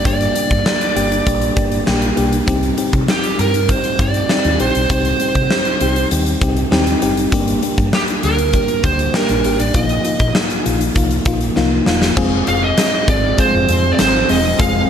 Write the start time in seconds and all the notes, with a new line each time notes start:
Already playing: G3 A#3 D4 G4
0.05 G1 G3 A#3 D4 G4 D5, kick, closed hi-hat
0.21 closed hi-hat
0.35 G3 A#3 D4 G4, closed hi-hat
0.51 G2, kick, closed hi-hat
0.65 G3 A#3 D4 G4, snare
0.81 closed hi-hat
0.95 G1 G3 A#3 D4 G4, closed hi-hat
1.12 closed hi-hat
1.26 A#1 G3 A#3 D4 G4, kick, closed hi-hat
1.41 closed hi-hat
1.56 G1 G3 A#3 D4 G4, kick, closed hi-hat
1.72 closed hi-hat
1.86 A#1 G3 A#3 D4 G4, snare
2.02 closed hi-hat
2.16 B1 G3 A#3 D4 G4, closed hi-hat
2.33 closed hi-hat
2.47 C2 G3 C4 D#4 G4, kick, closed hi-hat
2.63 closed hi-hat
2.77 G3 C4 D#4 G4, closed hi-hat
2.93 C3, kick, closed hi-hat
3.07 G3 C4 D#4 G4, snare
3.24 closed hi-hat
3.38 G2 G3 C4 D#4 G4 A#4, closed hi-hat
3.54 closed hi-hat
3.68 G3 C4 D#4 G4 C5, kick, closed hi-hat
3.84 closed hi-hat
3.99 G2 G3 C4 D#4 G4 D5, kick, closed hi-hat
4.14 closed hi-hat
4.29 G3 C4 D#4 G4, snare
4.44 D#2, closed hi-hat
4.59 A#1 G3 C4 D#4 G4 C5, closed hi-hat
4.75 B1, closed hi-hat
4.90 C2 G3 C4 D#4 G4 C5, kick, closed hi-hat
5.05 closed hi-hat
5.20 G3 C4 D#4 G4, closed hi-hat
5.35 C3, kick, closed hi-hat
5.50 G3 C4 D#4 G4, snare
5.65 closed hi-hat
5.80 C2 G3 C4 D#4 G4, closed hi-hat
5.96 closed hi-hat
6.11 D#2 G3 C4 D#4 G4, closed hi-hat
6.26 closed hi-hat
6.41 C2 G3 C4 D#4 G4, kick, closed hi-hat
6.57 closed hi-hat
6.71 D#2 G3 C4 D#4 G4, snare
6.87 closed hi-hat
7.02 F#1 G3 C4 D#4 G4, closed hi-hat
7.17 closed hi-hat
7.32 G1 G3 A#3 D4 G4, kick, closed hi-hat
7.48 closed hi-hat
7.62 G3 A#3 D4 G4, closed hi-hat
7.78 G2, kick, closed hi-hat
7.92 G3 A#3 D4 G4, snare
8.08 closed hi-hat
8.23 D2 G3 A#3 D4 G4 A#4, closed hi-hat
8.38 closed hi-hat
8.53 G3 A#3 D4 G4, kick, closed hi-hat
8.68 closed hi-hat
8.84 D2 G3 A#3 D4 G4 C5, kick, closed hi-hat
8.99 closed hi-hat
9.14 G3 A#3 D4 G4 A#4, snare
9.29 A#1, closed hi-hat
9.44 G#1 G3 A#3 D4 G4, closed hi-hat
9.60 A1 D5, closed hi-hat
9.74 A#1 F3 A#3 D#4 F4 D#5, kick, closed hi-hat
9.89 closed hi-hat
10.04 F3 A#3 D#4 F4, closed hi-hat
10.19 A#2, kick, closed hi-hat
10.35 F3 A#3 D#4 F4, snare
10.50 closed hi-hat
10.64 A#1 F3 A#3 D#4 F4, closed hi-hat
10.81 closed hi-hat
10.95 C2 F3 A#3 D#4 F4, kick, closed hi-hat
11.11 closed hi-hat
11.25 A#1 F3 A#3 D#4 F4, kick, closed hi-hat
11.41 closed hi-hat
11.56 C2 F3 A#3 D#4 F4, snare
11.86 E1 F3 A#3 D#4 F4, snare
12.02 snare
12.17 F1 F3 G#3 C4 F4 G#4, kick, crash
12.47 F1 G#3 C4 F4 G#4 F5, closed hi-hat
12.64 D#5
12.77 G#3 C4 F4 G#4, snare, closed hi-hat
13.08 G#1 G#3 C4 F4 G#4 D5, kick, closed hi-hat
13.38 G#3 C4 F4 G#4 C5, kick, closed hi-hat
13.54 F1
13.68 F2 G#3 C4 F4 G#4, closed hi-hat
13.92 D5
13.98 G#1 G#3 C4 F4 G#4 C5, snare, closed hi-hat
14.28 E1 G#3 C4 F4 G#4 D#5, open hi-hat
14.59 F1 G#3 C4 F4 G#4 F5, kick, closed hi-hat